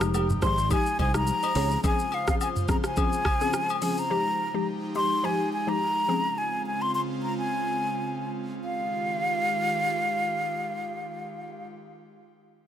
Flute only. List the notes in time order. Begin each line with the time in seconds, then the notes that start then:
Already playing: A#5
0.44 C6
0.72 G#5
1.00 G#5
1.16 A#5
1.86 G#5
2.14 F5
2.30 F5
2.43 G#5
2.71 A#5
2.86 G#5
3.83 G#5
3.99 A#5
4.97 C6
5.25 G#5
5.53 G#5
5.69 A#5
6.38 G#5
6.67 G#5
6.82 C6
6.95 C6
7.23 A#5
7.38 G#5
8.64 F5